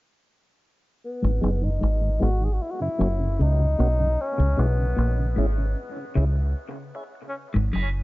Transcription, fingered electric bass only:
1.24 G#1
1.43 F#1
1.83 G#1
2.22 G#1
3.01 F#1
3.40 C#2
3.80 B1
4.40 C#2
4.59 B1
4.98 A#1
5.38 G#1
6.17 C#2
7.56 G#1
7.75 F#1

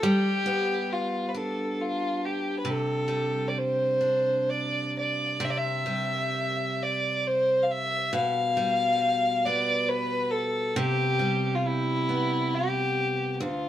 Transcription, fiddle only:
0.03 G4
0.93 F4
1.28 B4
1.36 A4
1.81 F4
2.25 G4
2.59 B4
2.69 A4
3.48 D5
3.57 C5
4.49 D5
4.99 D5
5.44 E5
5.50 D5
5.57 E5
6.83 D5
7.27 C5
7.63 F5
7.71 E5
8.14 F5
9.45 D5
9.89 B4
10.31 A4
10.76 G4
11.55 F4
11.66 E4
12.54 G4
13.34 G4
13.42 F4

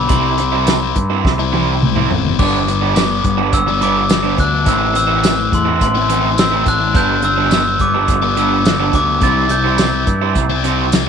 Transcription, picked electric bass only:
0.10 C2
0.96 G2
1.24 C2
2.11 A1
2.24 G1
2.39 G1
3.24 G1
3.53 G1
4.38 D2
4.67 A1
5.52 E2
5.81 A1
6.66 A1
6.95 G1
7.80 G1
8.08 G1
8.93 D2
9.22 C2
10.07 G2
10.36 C2

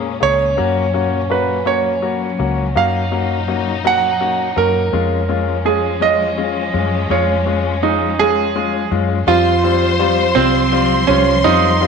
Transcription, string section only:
Already playing: A#2 G#3 C#4
0.57 F#3
2.76 D#4
4.94 F3 G#3 C#4
9.27 F3 G3 C5
11.45 A#3

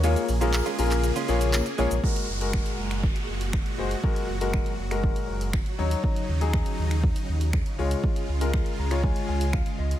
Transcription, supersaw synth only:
0.04 C#3 A#3 G#4
2.04 A#2 G#3 F#4
4.04 F#3
5.79 C#3 D#4
7.79 G#3 F4

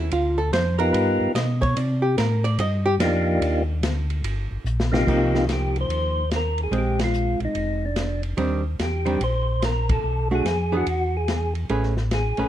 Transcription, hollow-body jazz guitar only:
Already playing: E4
0.13 F4
0.38 A4
0.53 C5
0.79 A#4
0.93 B4
1.35 D#5
1.62 C#5
1.77 D5
2.02 G4
2.18 A#4
2.44 D5
2.60 D#5
2.86 G4
5.07 F3 A#3 D#4
6.72 G#3 C4
8.37 D#3 G3 C4 D4
9.05 D#3 G3 C4 D4
10.31 A3 D4 F#4
10.72 E3 B3 D4 G#4
11.70 A3 C#4 G#4 B4
12.38 A3 C#4 G#4 B4

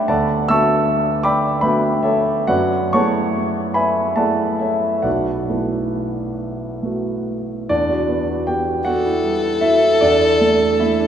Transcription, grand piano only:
Already playing: A3 B3 D4 G4 B4 C#5 D5 E5 F#5 G5 A5 B5 C#6 D6 E6
0.08 D2 A4 D5 F#5 A5
0.48 A3 B3 D4 F#4 E5 A5 C#6 E6
1.23 D5 G5 B5 D6
1.61 A3 B3 D4 F#4 B4 E5 G5 B5
2.03 A4 C#5 E5
2.47 F#2 F#4 B4 D5 F#5
2.93 A3 B3 E4 G#4 C#5 F#5 A5 C#6
3.74 B4 E5 G#5 B5
4.16 A3 B3 E4 G#4 A4 D5 F#5 A5
4.59 A4 C#5 E5
5.02 B1 F#4 B4 D5 F#5
5.49 A3 B3 E4 F#4
6.83 A3 B3 E4 F#4
7.69 E2 D4 D5
7.89 F#4
8.08 B3
8.29 F#4
8.47 B3 G4 G5
8.66 F#4
8.85 B3 F#4 F#5
9.05 E4
9.24 G3
9.44 E4
9.61 E4 F#4 E5
9.80 E4
10.01 E2 D4 D5
10.21 D4
10.41 A3
10.60 D4
10.80 A3 E4 E5
11.00 D4

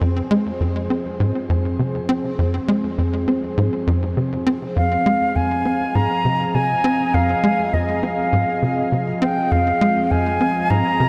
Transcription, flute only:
4.76 F5
5.36 G#5
5.95 A#5
6.55 G#5
7.14 F5
7.74 D#5
8.03 F5
9.22 G5
9.51 F5
10.11 G#5
10.70 A#5

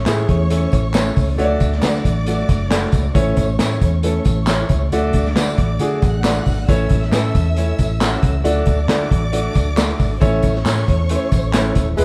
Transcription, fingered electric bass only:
0.07 A2
0.29 E2
0.73 A1
1.17 C#2
1.38 D2
1.61 D2
1.83 D3
2.05 A1
2.49 F#1
2.93 C#2
3.15 A1
3.37 A1
3.59 A2
3.81 E2
4.26 A1
4.70 C#2
4.91 D2
5.14 D2
5.35 D3
5.58 A1
5.80 D3
6.03 A1
6.46 G#1
6.68 A1
6.91 A1
7.12 A2
7.35 E2
7.79 A1
8.23 C#2
8.45 D2
8.67 D2
8.88 D3
9.11 A1
9.55 D2
9.99 G#1
10.22 A1
10.43 A1
10.65 A2
10.88 E2
11.32 A1
11.43 A1
11.76 D#1
11.99 E1

